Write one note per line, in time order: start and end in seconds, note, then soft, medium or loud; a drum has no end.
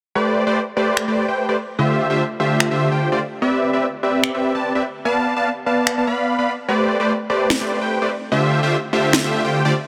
0.15 0.44 A3 medium
0.15 0.44 G4 medium
0.15 0.44 B4 medium
0.15 0.44 C5 medium
0.15 0.44 D5 loud
0.47 0.59 A3 medium
0.47 0.59 G4 medium
0.47 0.59 B4 medium
0.47 0.59 C5 medium
0.47 0.59 D5 loud
0.77 1.05 A3 medium
0.77 1.05 G4 medium
0.77 1.05 B4 medium
0.77 1.05 C5 medium
0.77 1.05 D5 medium
0.97 finger snap medium
1.08 1.26 A3 medium
1.08 1.26 G4 medium
1.08 1.26 B4 medium
1.08 1.26 C5 medium
1.08 1.26 D5 loud
1.28 1.46 A3 medium
1.28 1.46 G4 medium
1.28 1.46 B4 medium
1.28 1.46 C5 medium
1.28 1.46 G5 medium
1.49 1.56 A3 medium
1.49 1.56 G4 medium
1.49 1.56 B4 medium
1.49 1.56 C5 medium
1.49 1.56 D5 medium
1.79 2.07 D3 medium
1.79 2.07 A3 medium
1.79 2.07 F4 medium
1.79 2.07 G4 medium
1.79 2.07 C5 medium
1.79 2.07 E5 loud
2.10 2.23 D3 medium
2.10 2.23 A3 medium
2.10 2.23 F4 medium
2.10 2.23 G4 medium
2.10 2.23 C5 medium
2.10 2.23 E5 loud
2.40 2.69 D3 medium
2.40 2.69 A3 medium
2.40 2.69 F4 medium
2.40 2.69 G4 medium
2.40 2.69 C5 medium
2.40 2.69 E5 loud
2.60 finger snap medium
2.71 2.89 D3 medium
2.71 2.89 A3 medium
2.71 2.89 F4 medium
2.71 2.89 G4 medium
2.71 2.89 C5 medium
2.71 2.89 E5 loud
2.92 3.09 D3 medium
2.92 3.09 A3 medium
2.92 3.09 F4 medium
2.92 3.09 G4 medium
2.92 3.09 C5 medium
2.92 3.09 G5 medium
3.12 3.20 D3 medium
3.12 3.20 A3 medium
3.12 3.20 F4 medium
3.12 3.20 G4 medium
3.12 3.20 C5 medium
3.12 3.20 D5 loud
3.42 3.71 C4 medium
3.42 3.71 G4 medium
3.42 3.71 B4 medium
3.42 3.71 D5 medium
3.42 3.71 E5 loud
3.73 3.86 C4 medium
3.73 3.86 G4 medium
3.73 3.86 B4 medium
3.73 3.86 D5 medium
3.73 3.86 E5 loud
4.03 4.32 C4 medium
4.03 4.32 G4 medium
4.03 4.32 B4 medium
4.03 4.32 D5 medium
4.03 4.32 E5 medium
4.24 finger snap medium
4.34 4.52 C4 medium
4.34 4.52 G4 medium
4.34 4.52 B4 medium
4.34 4.52 D5 medium
4.34 4.52 E5 loud
4.55 4.73 C4 medium
4.55 4.73 G4 medium
4.55 4.73 B4 medium
4.55 4.73 D5 medium
4.55 4.73 A5 medium
4.75 4.83 C4 medium
4.75 4.83 G4 medium
4.75 4.83 B4 medium
4.75 4.83 D5 medium
4.75 4.83 E5 loud
5.05 5.34 B3 medium
5.05 5.34 B4 medium
5.05 5.34 D5 medium
5.05 5.34 F5 medium
5.05 5.34 A5 loud
5.36 5.49 B3 medium
5.36 5.49 B4 medium
5.36 5.49 D5 medium
5.36 5.49 F5 medium
5.36 5.49 A5 loud
5.66 5.95 B3 medium
5.66 5.95 B4 medium
5.66 5.95 D5 medium
5.66 5.95 F5 medium
5.66 5.95 A5 loud
5.87 finger snap medium
5.98 6.05 B3 medium
5.98 6.05 B4 medium
5.98 6.05 D5 medium
5.98 6.05 F5 medium
5.98 6.05 A5 loud
6.07 6.36 B3 medium
6.07 6.36 B4 medium
6.07 6.36 D5 medium
6.07 6.36 F5 medium
6.07 6.36 B5 medium
6.39 6.51 B3 medium
6.39 6.51 B4 medium
6.39 6.51 D5 medium
6.39 6.51 F5 medium
6.39 6.51 B5 medium
6.68 6.97 A3 medium
6.68 6.97 G4 medium
6.68 6.97 B4 medium
6.68 6.97 C5 medium
6.68 6.97 D5 loud
7.00 7.12 A3 medium
7.00 7.12 G4 medium
7.00 7.12 B4 medium
7.00 7.12 C5 medium
7.00 7.12 D5 loud
7.30 7.58 A3 medium
7.30 7.58 G4 medium
7.30 7.58 B4 medium
7.30 7.58 C5 medium
7.30 7.58 D5 loud
7.50 finger snap medium
7.50 snare loud
7.61 7.79 A3 medium
7.61 7.79 G4 medium
7.61 7.79 B4 medium
7.61 7.79 C5 medium
7.61 7.79 D5 loud
7.81 7.99 A3 medium
7.81 7.99 G4 medium
7.81 7.99 B4 medium
7.81 7.99 C5 medium
7.81 7.99 G5 medium
8.02 8.09 A3 medium
8.02 8.09 G4 medium
8.02 8.09 B4 medium
8.02 8.09 C5 medium
8.02 8.09 D5 loud
8.32 8.60 D3 loud
8.32 8.60 A3 medium
8.32 8.60 F4 medium
8.32 8.60 G4 medium
8.32 8.60 C5 medium
8.32 8.60 E5 loud
8.63 8.76 D3 medium
8.63 8.76 A3 medium
8.63 8.76 F4 medium
8.63 8.76 G4 medium
8.63 8.76 C5 medium
8.63 8.76 E5 loud
8.93 9.22 D3 medium
8.93 9.22 A3 medium
8.93 9.22 F4 medium
8.93 9.22 G4 medium
8.93 9.22 C5 medium
8.93 9.22 E5 medium
9.13 finger snap medium
9.13 snare loud
9.24 9.42 D3 medium
9.24 9.42 A3 medium
9.24 9.42 F4 medium
9.24 9.42 G4 medium
9.24 9.42 C5 medium
9.24 9.42 E5 loud
9.45 9.62 D3 medium
9.45 9.62 A3 medium
9.45 9.62 F4 medium
9.45 9.62 G4 medium
9.45 9.62 C5 medium
9.45 9.62 G5 medium
9.65 9.73 D3 medium
9.65 9.73 A3 medium
9.65 9.73 F4 medium
9.65 9.73 G4 medium
9.65 9.73 C5 medium
9.65 9.73 D5 loud